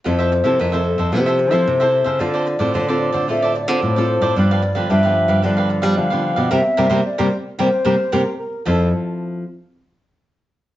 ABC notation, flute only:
X:1
M:4/4
L:1/8
Q:1/4=112
K:F
V:1 name="Flute"
c2 B A c4 | d2 d2 e d c2 | d2 e2 d2 f2 | e2 d2 c2 B B |
A z6 z |]